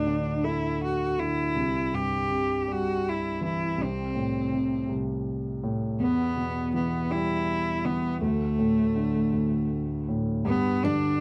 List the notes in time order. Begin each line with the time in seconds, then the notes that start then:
Already playing: D2 A2 D4
0.06 D3
0.44 A3 E4
0.83 F#4
1.18 D3 E4
1.56 C2
1.93 G2 G4
2.31 C3
2.61 G4
2.68 G3 F#4
3.08 E4
3.41 E3 E4
3.78 C2
3.82 C4
4.15 A2
4.52 C3
4.89 C2
5.64 A2
6.00 E2 B3
6.37 B2
6.74 E3 B3
7.10 G3 E4
7.85 E3 B3
8.22 D2 A3
8.59 A2
8.96 D3
9.33 D2
10.08 A2
10.45 G2 B3
10.83 D3 D4